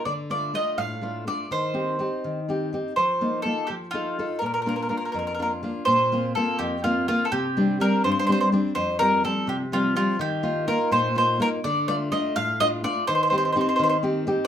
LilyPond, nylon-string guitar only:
\new Staff \with { instrumentName = "Nylon-string guitar" } { \time 6/8 \key bes \major \tempo 4. = 83 d8 <a d' f'>8 <a d' f'>8 a,8 <a d' f'>8 <a d' f'>8 | ees8 <c' ees' g'>8 <c' ees' g'>8 ees8 <c' ees' g'>8 <c' ees' g'>8 | f8 <bes ees' f'>8 <bes ees' f'>8 f8 <ees' f' a'>8 <ees' f' a'>8 | bes,8 <bes d' f'>8 <bes d' f'>8 f,8 <bes d' f'>8 <bes d' f'>8 |
bes,8 <bes c' f'>8 <bes c' f'>8 f,8 <bes c' f'>8 <bes c' f'>8 | c8 <g c' d'>8 <g c' d'>8 g,8 <g c' d'>8 <g c' d'>8 | f,8 <f g c'>8 <f g c'>8 c8 <f g c'>8 <f g c'>8 | ees8 <bes ees' f'>8 <bes ees' f'>8 bes,8 <bes ees' f'>8 <bes ees' f'>8 |
d8 <a d' f'>8 <a d' f'>8 a,8 <a d' f'>8 <a d' f'>8 | ees8 <c' ees' g'>8 <c' ees' g'>8 ees8 <c' ees' g'>8 <c' ees' g'>8 | }